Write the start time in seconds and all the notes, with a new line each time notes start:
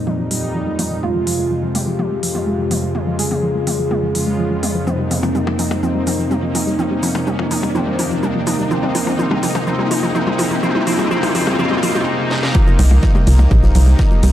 Already playing: F2 A#2 D#3 G3 A#3 C4 D#4 G4 A#5, riser
0.07 F3, mid tom
0.19 F3
0.31 A#2 G3 D#4, open hi-hat
0.43 F3
0.55 F3
0.67 G3
0.79 F3, open hi-hat, mid tom
0.91 F3
1.03 C3 G#3 C4 F4, mid tom
1.15 F3
1.27 F3, open hi-hat
1.39 G#3
1.51 F3
1.63 F3
1.75 G#3 G4, open hi-hat, mid tom
1.87 F3
1.99 F3, mid tom
2.11 G#3
2.23 C3 F3 G#3 F4, open hi-hat
2.35 F3, mid tom
2.47 G#3
2.59 F3
2.71 F3, open hi-hat, mid tom
2.83 G#3
2.95 C#3 F3 G#3 C#4 F4 G#4, mid tom
3.07 F3
3.19 G#3 G#4, open hi-hat
3.31 F3, mid tom
3.43 F3
3.55 G#3
3.67 F3, open hi-hat, mid tom
3.79 F3
3.91 G#3, mid tom
4.03 F3
4.15 C#3 F3 G#3 F4, open hi-hat
4.27 G#3
4.39 F3
4.51 F3
4.63 G#3, open hi-hat, mid tom
4.75 F3
4.87 C3 F3 A#3 C4 D#4 A#4 G5, mid tom, shaker
4.99 G3
5.11 F3, open hi-hat, mid tom, shaker
5.23 F3, percussion blips, shaker
5.35 G3, mid tom, shaker
5.47 F3, percussion blips
5.59 F3 D#4, open hi-hat, mid tom, shaker
5.71 G3, percussion blips, shaker
5.83 C3 F3 A#3 C4 D#4, mid tom, shaker
5.95 G3
6.07 F3, open hi-hat, mid tom, shaker
6.19 F3, shaker
6.31 G3, mid tom, shaker
6.43 F3
6.55 F3 D#4, open hi-hat, mid tom, shaker
6.67 G3, shaker
6.79 C3 D#3 F3 A#3 C4 D#4 G4 A#4 A#5, mid tom, shaker
6.91 G3
7.03 F3, open hi-hat, mid tom, shaker
7.15 F3, percussion blips, shaker
7.27 G3, mid tom, shaker
7.39 F3, percussion blips
7.51 F3 D#4, open hi-hat, mid tom, shaker
7.63 G3, percussion blips, shaker
7.75 C3 F3 A#3 C4 D#4, mid tom, shaker
7.87 G3
7.99 F3, open hi-hat, mid tom, shaker
8.11 F3, shaker
8.23 G3, mid tom, shaker
8.35 F3
8.47 F3 D#4, open hi-hat, mid tom, shaker
8.59 G3, shaker
8.71 C3 F3 A#3 C4 D#4 F4 G#4, mid tom, shaker
8.83 G3, mid tom
8.95 F3, open hi-hat, mid tom, shaker
9.07 F3, mid tom, percussion blips, shaker
9.19 C3 F3 A#3 C4 D#4, mid tom, shaker
9.31 G3, mid tom, percussion blips
9.43 F3, open hi-hat, mid tom, shaker
9.55 F3, mid tom, percussion blips, shaker
9.67 C3 F3 A#3 C4 D#4, mid tom, shaker
9.79 G3, mid tom
9.91 F3, open hi-hat, mid tom, shaker
10.03 F3, mid tom, shaker
10.15 C3 F3 A#3 C4 D#4, mid tom, shaker
10.27 G3, mid tom
10.39 F3, open hi-hat, mid tom, shaker
10.51 F3, mid tom, shaker
10.63 C3 C#3 F3 A#3 C4 C#4 D#4 G#4 G#5, mid tom, shaker
10.69 mid tom
10.75 G3, mid tom
10.81 mid tom
10.87 C3 F3 A#3 C4 D#4, open hi-hat, mid tom, shaker
10.93 mid tom
10.99 G3, mid tom, percussion blips, shaker
11.05 mid tom
11.11 C3 F3 A#3 C4 D#4, mid tom, shaker
11.17 mid tom
11.23 G3, open hi-hat, mid tom, percussion blips
11.29 mid tom
11.35 C3 F3 A#3 C4 D#4, open hi-hat, mid tom, shaker
11.41 mid tom
11.47 G3, mid tom, percussion blips, shaker
11.53 mid tom
11.59 C3 F3 A#3 C4 D#4, mid tom, shaker
11.65 mid tom
11.71 G3, mid tom
11.77 mid tom
11.83 C3 F3 A#3 C4 D#4, open hi-hat, mid tom, shaker
11.89 mid tom
11.95 G3, mid tom, shaker
12.01 mid tom
12.07 C3 A#3 D#4
12.31 C3 A#3 D#4, snare
12.43 snare
12.54 C3 F3 A#3 D#4 G4 C5 D#5 A#5, kick, ride, shaker
12.67 F3, shaker
12.79 C2 G3, open hi-hat, ride
12.91 F3, percussion blips, shaker
13.03 F3, kick, snare, ride, shaker
13.15 G3, percussion blips, shaker
13.27 C2 F3, open hi-hat, ride
13.39 F3, ride, percussion blips, shaker
13.51 A#1 G3, kick, ride, shaker
13.63 F3, snare, shaker
13.75 C2 C3 F3 A#3 D#4, open hi-hat, ride
13.87 G3, shaker
13.99 F3, kick, snare, ride, shaker
14.11 F3, ride, shaker
14.23 C2 G3, open hi-hat, ride